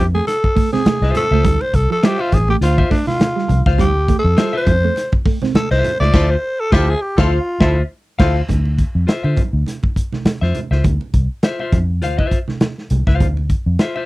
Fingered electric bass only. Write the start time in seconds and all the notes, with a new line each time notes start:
Already playing: F2
0.86 muted fingered electric bass stroke
1.02 C2
1.31 C#2
1.45 D2
1.73 C2
2.33 A1
2.61 D2
3.49 C2
3.66 C#2
3.79 D2
4.24 F2
4.67 F2
5.54 muted fingered electric bass stroke
5.71 C2
6.00 C#2
6.14 D2
6.72 D2
7.18 D2
7.60 D2
8.20 D2
8.49 D2
8.95 F2
9.08 muted fingered electric bass stroke
9.24 D3
9.53 D2
10.25 muted fingered electric bass stroke
10.42 F2
10.71 C#2
10.84 D2
11.14 C2
11.73 F2
12.02 D2
12.91 C2
13.07 C#2
13.20 D2
13.66 F2